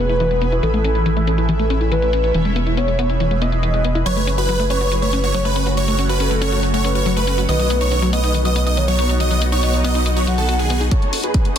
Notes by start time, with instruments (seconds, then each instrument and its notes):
Already playing: analog synth bass E1, ambient pad E3 E4 G#4 B4
0.00 soft synth lead B4
0.09 synth pluck E4, closed hi-hat
0.20 synth pluck E3, closed hi-hat
0.31 synth pluck G#3, closed hi-hat
0.42 synth pluck B3, closed hi-hat
0.52 synth pluck E4, closed hi-hat
0.63 analog synth bass A1, synth pluck E3, ambient pad A3 C#4, soft synth lead A4, closed hi-hat
0.74 synth pluck A3, closed hi-hat
0.84 synth pluck C#4, closed hi-hat
0.95 synth pluck E4, closed hi-hat
1.06 synth pluck E3, closed hi-hat
1.17 synth pluck A3, closed hi-hat
1.27 synth pluck C#4, soft synth lead A4, closed hi-hat
1.38 synth pluck E4, closed hi-hat
1.49 synth pluck E3, closed hi-hat
1.59 synth pluck A3, closed hi-hat
1.70 synth pluck C#4, closed hi-hat
1.81 synth pluck E4, closed hi-hat
1.92 synth pluck E3, soft synth lead B4, closed hi-hat
2.02 synth pluck A3, closed hi-hat
2.13 synth pluck C#4, closed hi-hat
2.24 synth pluck E4, closed hi-hat
2.34 analog synth bass E1, synth pluck E3, ambient pad E3 G#4 B4, closed hi-hat
2.45 synth pluck G#3, closed hi-hat
2.56 synth pluck B3, closed hi-hat
2.67 synth pluck E4, closed hi-hat
2.77 synth pluck B3, soft synth lead C#5, closed hi-hat
2.88 synth pluck G#3, closed hi-hat
2.99 synth pluck B3, closed hi-hat
3.09 synth pluck E4, closed hi-hat
3.20 synth pluck E3, closed hi-hat
3.31 synth pluck G#3, closed hi-hat
3.42 synth pluck B3, soft synth lead D#5, closed hi-hat
3.52 synth pluck E4, closed hi-hat
3.63 synth pluck E3, closed hi-hat
3.74 synth pluck G#3, closed hi-hat
3.85 synth pluck B3, closed hi-hat
3.95 synth pluck E4, closed hi-hat
4.06 analog synth bass F#1, synth pluck F#3, ambient pad A3 C#4 F#4, soft synth lead B4, supersaw synth C#5, closed hi-hat
4.17 synth pluck A3, closed hi-hat
4.27 synth pluck C#4, closed hi-hat
4.38 synth pluck F#4, supersaw synth B4, closed hi-hat
4.49 synth pluck F#3, closed hi-hat
4.59 synth pluck A3, closed hi-hat
4.70 synth pluck C#4, soft synth lead B4, supersaw synth C#5, closed hi-hat
4.81 synth pluck F#4, closed hi-hat
4.92 synth pluck F#3, closed hi-hat
5.02 synth pluck A3, supersaw synth C#5, closed hi-hat
5.13 synth pluck C#4, closed hi-hat
5.24 synth pluck F#4, supersaw synth C#5, closed hi-hat
5.34 synth pluck F#3, soft synth lead C#5, closed hi-hat
5.45 synth pluck A3, supersaw synth B4, closed hi-hat
5.56 synth pluck C#4, closed hi-hat
5.67 synth pluck F#4, closed hi-hat
5.77 synth pluck F#3, supersaw synth C#5, closed hi-hat
5.88 synth pluck A3, closed hi-hat
5.99 synth pluck C#4, closed hi-hat
6.09 synth pluck F#4, supersaw synth B4, closed hi-hat
6.20 synth pluck C#4, soft synth lead A4, closed hi-hat
6.31 synth pluck A3, closed hi-hat
6.42 synth pluck C#4, supersaw synth C#5, closed hi-hat
6.52 synth pluck F#4, closed hi-hat
6.63 synth pluck F#3, closed hi-hat
6.74 synth pluck A3, supersaw synth C#5, closed hi-hat
6.84 synth pluck C#4, soft synth lead B4, closed hi-hat
6.95 synth pluck F#4, supersaw synth C#5, closed hi-hat
7.06 synth pluck F#3, closed hi-hat
7.17 synth pluck A3, supersaw synth B4, closed hi-hat
7.27 synth pluck C#4, closed hi-hat
7.38 synth pluck F#4, closed hi-hat
7.49 analog synth bass B1, synth pluck D#3, ambient pad B3 D#4 F#4, soft synth lead B4, supersaw synth D#5, closed hi-hat
7.59 synth pluck F#3, closed hi-hat
7.70 synth pluck B3, closed hi-hat
7.81 synth pluck D#4, supersaw synth C#5, closed hi-hat
7.92 synth pluck D#3, closed hi-hat
8.02 synth pluck F#3, closed hi-hat
8.13 synth pluck B3, soft synth lead B4, supersaw synth D#5, closed hi-hat
8.24 synth pluck D#4, closed hi-hat
8.34 synth pluck D#3, closed hi-hat
8.45 synth pluck F#3, supersaw synth D#5, closed hi-hat
8.56 synth pluck B3, closed hi-hat
8.67 synth pluck D#4, supersaw synth D#5, closed hi-hat
8.77 synth pluck D#3, soft synth lead C#5, closed hi-hat
8.88 synth pluck F#3, supersaw synth C#5, closed hi-hat
8.99 synth pluck B3, closed hi-hat
9.09 synth pluck D#4, closed hi-hat
9.20 synth pluck D#3, supersaw synth D#5, closed hi-hat
9.31 synth pluck F#3, closed hi-hat
9.42 synth pluck B3, closed hi-hat
9.52 synth pluck D#4, supersaw synth C#5, closed hi-hat
9.63 synth pluck B3, soft synth lead D#5, closed hi-hat
9.74 synth pluck F#3, closed hi-hat
9.84 synth pluck B3, supersaw synth D#5, closed hi-hat
9.95 synth pluck D#4, closed hi-hat
10.06 synth pluck D#3, closed hi-hat
10.17 synth pluck F#3, supersaw synth C#5, closed hi-hat
10.27 synth pluck F#3, soft synth lead F#5, closed hi-hat
10.38 synth pluck D#3, supersaw synth A4, closed hi-hat
10.49 synth pluck F#4, closed hi-hat
10.59 synth pluck D#3, supersaw synth G#4, closed hi-hat
10.70 synth pluck B3, closed hi-hat
10.81 synth pluck D#4, closed hi-hat
10.91 ambient pad F#2 F#3 C#4 A4, synth pluck F#3, supersaw synth A4 C#5, kick, closed hi-hat, riser
11.02 synth pluck A3, closed hi-hat
11.13 synth pluck C#4, open hi-hat
11.24 synth pluck F#4, supersaw synth G#4 B4, closed hi-hat
11.34 synth pluck F#3, kick, closed hi-hat
11.45 synth pluck A3, closed hi-hat